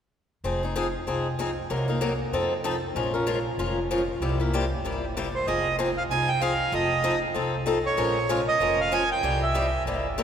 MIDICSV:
0, 0, Header, 1, 4, 480
1, 0, Start_track
1, 0, Key_signature, -4, "minor"
1, 0, Tempo, 314136
1, 665, Time_signature, 4, 2, 24, 8
1, 15631, End_track
2, 0, Start_track
2, 0, Title_t, "Accordion"
2, 0, Program_c, 0, 21
2, 8172, Note_on_c, 0, 72, 59
2, 8348, Note_off_c, 0, 72, 0
2, 8361, Note_on_c, 0, 75, 70
2, 8803, Note_off_c, 0, 75, 0
2, 9129, Note_on_c, 0, 77, 74
2, 9215, Note_off_c, 0, 77, 0
2, 9327, Note_on_c, 0, 80, 85
2, 9598, Note_on_c, 0, 79, 85
2, 9609, Note_off_c, 0, 80, 0
2, 9797, Note_on_c, 0, 77, 77
2, 9799, Note_off_c, 0, 79, 0
2, 10287, Note_off_c, 0, 77, 0
2, 10296, Note_on_c, 0, 75, 71
2, 10991, Note_off_c, 0, 75, 0
2, 12007, Note_on_c, 0, 73, 70
2, 12895, Note_off_c, 0, 73, 0
2, 12958, Note_on_c, 0, 75, 85
2, 13446, Note_off_c, 0, 75, 0
2, 13457, Note_on_c, 0, 77, 77
2, 13646, Note_off_c, 0, 77, 0
2, 13646, Note_on_c, 0, 80, 88
2, 13897, Note_off_c, 0, 80, 0
2, 13930, Note_on_c, 0, 79, 87
2, 14404, Note_on_c, 0, 76, 68
2, 14411, Note_off_c, 0, 79, 0
2, 15025, Note_off_c, 0, 76, 0
2, 15631, End_track
3, 0, Start_track
3, 0, Title_t, "Steel-string acoustic guitar"
3, 0, Program_c, 1, 25
3, 676, Note_on_c, 1, 60, 55
3, 678, Note_on_c, 1, 53, 47
3, 690, Note_on_c, 1, 63, 57
3, 695, Note_on_c, 1, 68, 53
3, 941, Note_off_c, 1, 60, 0
3, 942, Note_off_c, 1, 53, 0
3, 942, Note_off_c, 1, 68, 0
3, 948, Note_off_c, 1, 63, 0
3, 961, Note_on_c, 1, 68, 41
3, 981, Note_on_c, 1, 63, 36
3, 986, Note_on_c, 1, 60, 35
3, 1143, Note_off_c, 1, 63, 0
3, 1145, Note_off_c, 1, 60, 0
3, 1145, Note_off_c, 1, 68, 0
3, 1155, Note_on_c, 1, 53, 70
3, 1161, Note_on_c, 1, 63, 77
3, 1163, Note_on_c, 1, 60, 69
3, 1170, Note_on_c, 1, 68, 71
3, 1313, Note_off_c, 1, 53, 0
3, 1316, Note_off_c, 1, 63, 0
3, 1317, Note_off_c, 1, 60, 0
3, 1320, Note_off_c, 1, 68, 0
3, 1634, Note_on_c, 1, 53, 46
3, 1641, Note_on_c, 1, 60, 49
3, 1645, Note_on_c, 1, 63, 54
3, 1648, Note_on_c, 1, 68, 57
3, 1930, Note_off_c, 1, 53, 0
3, 1933, Note_off_c, 1, 60, 0
3, 1935, Note_off_c, 1, 63, 0
3, 1937, Note_off_c, 1, 68, 0
3, 2121, Note_on_c, 1, 53, 68
3, 2128, Note_on_c, 1, 60, 70
3, 2134, Note_on_c, 1, 63, 69
3, 2139, Note_on_c, 1, 68, 69
3, 2277, Note_off_c, 1, 53, 0
3, 2280, Note_off_c, 1, 60, 0
3, 2283, Note_off_c, 1, 63, 0
3, 2286, Note_off_c, 1, 68, 0
3, 2596, Note_on_c, 1, 48, 54
3, 2601, Note_on_c, 1, 54, 52
3, 2602, Note_on_c, 1, 58, 53
3, 2603, Note_on_c, 1, 63, 53
3, 2609, Note_on_c, 1, 70, 57
3, 2852, Note_off_c, 1, 70, 0
3, 2863, Note_off_c, 1, 48, 0
3, 2865, Note_off_c, 1, 54, 0
3, 2866, Note_off_c, 1, 58, 0
3, 2867, Note_off_c, 1, 63, 0
3, 2870, Note_on_c, 1, 70, 44
3, 2886, Note_on_c, 1, 63, 38
3, 2897, Note_on_c, 1, 58, 38
3, 3060, Note_off_c, 1, 58, 0
3, 3061, Note_off_c, 1, 70, 0
3, 3064, Note_off_c, 1, 63, 0
3, 3070, Note_on_c, 1, 48, 75
3, 3071, Note_on_c, 1, 54, 70
3, 3078, Note_on_c, 1, 58, 74
3, 3083, Note_on_c, 1, 63, 78
3, 3085, Note_on_c, 1, 70, 71
3, 3232, Note_off_c, 1, 48, 0
3, 3232, Note_off_c, 1, 54, 0
3, 3236, Note_off_c, 1, 58, 0
3, 3238, Note_off_c, 1, 63, 0
3, 3239, Note_off_c, 1, 70, 0
3, 3565, Note_on_c, 1, 53, 50
3, 3568, Note_on_c, 1, 60, 60
3, 3574, Note_on_c, 1, 63, 60
3, 3576, Note_on_c, 1, 69, 53
3, 3857, Note_off_c, 1, 53, 0
3, 3858, Note_off_c, 1, 60, 0
3, 3861, Note_off_c, 1, 63, 0
3, 3862, Note_off_c, 1, 69, 0
3, 4036, Note_on_c, 1, 60, 73
3, 4037, Note_on_c, 1, 53, 69
3, 4042, Note_on_c, 1, 63, 73
3, 4051, Note_on_c, 1, 69, 75
3, 4196, Note_off_c, 1, 53, 0
3, 4196, Note_off_c, 1, 60, 0
3, 4198, Note_off_c, 1, 63, 0
3, 4203, Note_off_c, 1, 69, 0
3, 4519, Note_on_c, 1, 53, 56
3, 4525, Note_on_c, 1, 56, 50
3, 4527, Note_on_c, 1, 61, 57
3, 4528, Note_on_c, 1, 65, 55
3, 4531, Note_on_c, 1, 70, 59
3, 4775, Note_off_c, 1, 70, 0
3, 4781, Note_off_c, 1, 65, 0
3, 4786, Note_off_c, 1, 53, 0
3, 4788, Note_off_c, 1, 56, 0
3, 4789, Note_off_c, 1, 61, 0
3, 4794, Note_on_c, 1, 70, 47
3, 4799, Note_on_c, 1, 65, 41
3, 4813, Note_on_c, 1, 61, 43
3, 4976, Note_off_c, 1, 61, 0
3, 4984, Note_off_c, 1, 70, 0
3, 4987, Note_off_c, 1, 65, 0
3, 4989, Note_on_c, 1, 53, 66
3, 4993, Note_on_c, 1, 56, 73
3, 4994, Note_on_c, 1, 61, 70
3, 5005, Note_on_c, 1, 65, 84
3, 5006, Note_on_c, 1, 70, 72
3, 5152, Note_off_c, 1, 53, 0
3, 5155, Note_off_c, 1, 56, 0
3, 5155, Note_off_c, 1, 61, 0
3, 5160, Note_off_c, 1, 65, 0
3, 5161, Note_off_c, 1, 70, 0
3, 5485, Note_on_c, 1, 53, 49
3, 5486, Note_on_c, 1, 56, 52
3, 5487, Note_on_c, 1, 61, 55
3, 5491, Note_on_c, 1, 65, 64
3, 5494, Note_on_c, 1, 70, 58
3, 5777, Note_off_c, 1, 53, 0
3, 5778, Note_off_c, 1, 56, 0
3, 5778, Note_off_c, 1, 61, 0
3, 5781, Note_off_c, 1, 65, 0
3, 5782, Note_off_c, 1, 70, 0
3, 5969, Note_on_c, 1, 56, 66
3, 5972, Note_on_c, 1, 53, 70
3, 5975, Note_on_c, 1, 61, 70
3, 5980, Note_on_c, 1, 65, 72
3, 5984, Note_on_c, 1, 70, 78
3, 6123, Note_off_c, 1, 56, 0
3, 6124, Note_off_c, 1, 53, 0
3, 6126, Note_off_c, 1, 61, 0
3, 6128, Note_off_c, 1, 65, 0
3, 6130, Note_off_c, 1, 70, 0
3, 6444, Note_on_c, 1, 48, 58
3, 6444, Note_on_c, 1, 55, 52
3, 6448, Note_on_c, 1, 58, 53
3, 6450, Note_on_c, 1, 64, 57
3, 6456, Note_on_c, 1, 67, 61
3, 6700, Note_off_c, 1, 67, 0
3, 6708, Note_off_c, 1, 48, 0
3, 6708, Note_off_c, 1, 55, 0
3, 6711, Note_off_c, 1, 58, 0
3, 6711, Note_off_c, 1, 64, 0
3, 6718, Note_on_c, 1, 67, 45
3, 6733, Note_on_c, 1, 58, 40
3, 6733, Note_on_c, 1, 64, 41
3, 6906, Note_off_c, 1, 67, 0
3, 6914, Note_off_c, 1, 58, 0
3, 6914, Note_off_c, 1, 64, 0
3, 6929, Note_on_c, 1, 48, 73
3, 6936, Note_on_c, 1, 58, 73
3, 6938, Note_on_c, 1, 64, 74
3, 6939, Note_on_c, 1, 55, 72
3, 6949, Note_on_c, 1, 67, 80
3, 7083, Note_off_c, 1, 48, 0
3, 7086, Note_off_c, 1, 58, 0
3, 7087, Note_off_c, 1, 64, 0
3, 7088, Note_off_c, 1, 55, 0
3, 7093, Note_off_c, 1, 67, 0
3, 7404, Note_on_c, 1, 48, 49
3, 7414, Note_on_c, 1, 55, 50
3, 7416, Note_on_c, 1, 58, 54
3, 7421, Note_on_c, 1, 64, 54
3, 7421, Note_on_c, 1, 67, 61
3, 7697, Note_off_c, 1, 48, 0
3, 7702, Note_off_c, 1, 55, 0
3, 7703, Note_off_c, 1, 58, 0
3, 7705, Note_off_c, 1, 64, 0
3, 7705, Note_off_c, 1, 67, 0
3, 7895, Note_on_c, 1, 55, 63
3, 7896, Note_on_c, 1, 48, 66
3, 7902, Note_on_c, 1, 58, 75
3, 7902, Note_on_c, 1, 67, 75
3, 7908, Note_on_c, 1, 64, 72
3, 8046, Note_off_c, 1, 48, 0
3, 8046, Note_off_c, 1, 55, 0
3, 8049, Note_off_c, 1, 58, 0
3, 8049, Note_off_c, 1, 67, 0
3, 8052, Note_off_c, 1, 64, 0
3, 8365, Note_on_c, 1, 53, 53
3, 8371, Note_on_c, 1, 60, 49
3, 8376, Note_on_c, 1, 63, 54
3, 8377, Note_on_c, 1, 68, 66
3, 8657, Note_off_c, 1, 53, 0
3, 8660, Note_off_c, 1, 60, 0
3, 8663, Note_off_c, 1, 63, 0
3, 8663, Note_off_c, 1, 68, 0
3, 8842, Note_on_c, 1, 53, 77
3, 8842, Note_on_c, 1, 60, 74
3, 8855, Note_on_c, 1, 68, 76
3, 8856, Note_on_c, 1, 63, 75
3, 8999, Note_off_c, 1, 53, 0
3, 8999, Note_off_c, 1, 60, 0
3, 9005, Note_off_c, 1, 68, 0
3, 9006, Note_off_c, 1, 63, 0
3, 9334, Note_on_c, 1, 53, 54
3, 9340, Note_on_c, 1, 63, 61
3, 9341, Note_on_c, 1, 60, 58
3, 9349, Note_on_c, 1, 68, 60
3, 9621, Note_off_c, 1, 53, 0
3, 9624, Note_off_c, 1, 60, 0
3, 9624, Note_off_c, 1, 63, 0
3, 9629, Note_off_c, 1, 68, 0
3, 9801, Note_on_c, 1, 53, 65
3, 9805, Note_on_c, 1, 60, 72
3, 9813, Note_on_c, 1, 63, 77
3, 9816, Note_on_c, 1, 68, 78
3, 9958, Note_off_c, 1, 53, 0
3, 9960, Note_off_c, 1, 60, 0
3, 9963, Note_off_c, 1, 63, 0
3, 9965, Note_off_c, 1, 68, 0
3, 10273, Note_on_c, 1, 60, 59
3, 10275, Note_on_c, 1, 53, 62
3, 10279, Note_on_c, 1, 63, 59
3, 10293, Note_on_c, 1, 69, 62
3, 10570, Note_off_c, 1, 60, 0
3, 10571, Note_off_c, 1, 53, 0
3, 10573, Note_off_c, 1, 63, 0
3, 10580, Note_off_c, 1, 69, 0
3, 10752, Note_on_c, 1, 53, 67
3, 10756, Note_on_c, 1, 60, 82
3, 10762, Note_on_c, 1, 63, 80
3, 10767, Note_on_c, 1, 69, 77
3, 10912, Note_off_c, 1, 53, 0
3, 10914, Note_off_c, 1, 60, 0
3, 10918, Note_off_c, 1, 63, 0
3, 10920, Note_off_c, 1, 69, 0
3, 11222, Note_on_c, 1, 53, 53
3, 11236, Note_on_c, 1, 60, 59
3, 11240, Note_on_c, 1, 63, 57
3, 11242, Note_on_c, 1, 69, 60
3, 11524, Note_off_c, 1, 53, 0
3, 11531, Note_off_c, 1, 60, 0
3, 11533, Note_off_c, 1, 63, 0
3, 11534, Note_off_c, 1, 69, 0
3, 11701, Note_on_c, 1, 53, 74
3, 11712, Note_on_c, 1, 60, 74
3, 11712, Note_on_c, 1, 63, 79
3, 11725, Note_on_c, 1, 69, 84
3, 11866, Note_off_c, 1, 53, 0
3, 11872, Note_off_c, 1, 60, 0
3, 11872, Note_off_c, 1, 63, 0
3, 11878, Note_off_c, 1, 69, 0
3, 12181, Note_on_c, 1, 53, 63
3, 12187, Note_on_c, 1, 56, 57
3, 12192, Note_on_c, 1, 61, 64
3, 12193, Note_on_c, 1, 70, 67
3, 12195, Note_on_c, 1, 65, 61
3, 12482, Note_off_c, 1, 53, 0
3, 12485, Note_off_c, 1, 56, 0
3, 12488, Note_off_c, 1, 61, 0
3, 12489, Note_off_c, 1, 65, 0
3, 12489, Note_off_c, 1, 70, 0
3, 12670, Note_on_c, 1, 53, 74
3, 12674, Note_on_c, 1, 61, 82
3, 12677, Note_on_c, 1, 56, 74
3, 12682, Note_on_c, 1, 65, 76
3, 12685, Note_on_c, 1, 70, 88
3, 12830, Note_off_c, 1, 53, 0
3, 12832, Note_off_c, 1, 61, 0
3, 12834, Note_off_c, 1, 56, 0
3, 12836, Note_off_c, 1, 65, 0
3, 12837, Note_off_c, 1, 70, 0
3, 13146, Note_on_c, 1, 53, 59
3, 13155, Note_on_c, 1, 56, 54
3, 13159, Note_on_c, 1, 61, 61
3, 13162, Note_on_c, 1, 65, 56
3, 13163, Note_on_c, 1, 70, 61
3, 13444, Note_off_c, 1, 53, 0
3, 13449, Note_off_c, 1, 56, 0
3, 13450, Note_off_c, 1, 61, 0
3, 13452, Note_off_c, 1, 65, 0
3, 13453, Note_off_c, 1, 70, 0
3, 13623, Note_on_c, 1, 53, 70
3, 13631, Note_on_c, 1, 56, 76
3, 13636, Note_on_c, 1, 61, 70
3, 13639, Note_on_c, 1, 70, 79
3, 13641, Note_on_c, 1, 65, 78
3, 13786, Note_off_c, 1, 53, 0
3, 13789, Note_off_c, 1, 56, 0
3, 13792, Note_off_c, 1, 61, 0
3, 13794, Note_off_c, 1, 65, 0
3, 13794, Note_off_c, 1, 70, 0
3, 14104, Note_on_c, 1, 48, 54
3, 14107, Note_on_c, 1, 55, 53
3, 14116, Note_on_c, 1, 64, 60
3, 14118, Note_on_c, 1, 58, 53
3, 14122, Note_on_c, 1, 67, 60
3, 14402, Note_off_c, 1, 48, 0
3, 14404, Note_off_c, 1, 55, 0
3, 14408, Note_off_c, 1, 64, 0
3, 14409, Note_off_c, 1, 58, 0
3, 14411, Note_off_c, 1, 67, 0
3, 14584, Note_on_c, 1, 48, 68
3, 14587, Note_on_c, 1, 55, 68
3, 14594, Note_on_c, 1, 58, 78
3, 14597, Note_on_c, 1, 64, 73
3, 14598, Note_on_c, 1, 67, 80
3, 14745, Note_off_c, 1, 48, 0
3, 14747, Note_off_c, 1, 55, 0
3, 14750, Note_off_c, 1, 58, 0
3, 14751, Note_off_c, 1, 64, 0
3, 14752, Note_off_c, 1, 67, 0
3, 15081, Note_on_c, 1, 55, 55
3, 15085, Note_on_c, 1, 48, 50
3, 15087, Note_on_c, 1, 58, 55
3, 15095, Note_on_c, 1, 64, 57
3, 15097, Note_on_c, 1, 67, 59
3, 15369, Note_off_c, 1, 55, 0
3, 15371, Note_off_c, 1, 48, 0
3, 15373, Note_off_c, 1, 58, 0
3, 15377, Note_off_c, 1, 64, 0
3, 15378, Note_off_c, 1, 67, 0
3, 15552, Note_on_c, 1, 48, 71
3, 15552, Note_on_c, 1, 55, 72
3, 15563, Note_on_c, 1, 58, 75
3, 15564, Note_on_c, 1, 67, 69
3, 15566, Note_on_c, 1, 64, 68
3, 15631, Note_off_c, 1, 48, 0
3, 15631, Note_off_c, 1, 55, 0
3, 15631, Note_off_c, 1, 58, 0
3, 15631, Note_off_c, 1, 64, 0
3, 15631, Note_off_c, 1, 67, 0
3, 15631, End_track
4, 0, Start_track
4, 0, Title_t, "Upright bass"
4, 0, Program_c, 2, 32
4, 668, Note_on_c, 2, 29, 68
4, 1436, Note_off_c, 2, 29, 0
4, 1630, Note_on_c, 2, 36, 63
4, 2398, Note_off_c, 2, 36, 0
4, 2600, Note_on_c, 2, 36, 70
4, 3365, Note_off_c, 2, 36, 0
4, 3554, Note_on_c, 2, 41, 62
4, 4321, Note_off_c, 2, 41, 0
4, 4507, Note_on_c, 2, 34, 76
4, 5277, Note_off_c, 2, 34, 0
4, 5466, Note_on_c, 2, 29, 62
4, 6236, Note_off_c, 2, 29, 0
4, 6423, Note_on_c, 2, 36, 78
4, 7195, Note_off_c, 2, 36, 0
4, 7397, Note_on_c, 2, 31, 63
4, 8163, Note_off_c, 2, 31, 0
4, 8359, Note_on_c, 2, 29, 72
4, 9123, Note_off_c, 2, 29, 0
4, 9306, Note_on_c, 2, 36, 63
4, 10075, Note_off_c, 2, 36, 0
4, 10271, Note_on_c, 2, 29, 78
4, 11038, Note_off_c, 2, 29, 0
4, 11224, Note_on_c, 2, 36, 67
4, 11993, Note_off_c, 2, 36, 0
4, 12184, Note_on_c, 2, 34, 79
4, 12952, Note_off_c, 2, 34, 0
4, 13143, Note_on_c, 2, 29, 66
4, 13911, Note_off_c, 2, 29, 0
4, 14106, Note_on_c, 2, 36, 78
4, 14871, Note_off_c, 2, 36, 0
4, 15060, Note_on_c, 2, 31, 63
4, 15631, Note_off_c, 2, 31, 0
4, 15631, End_track
0, 0, End_of_file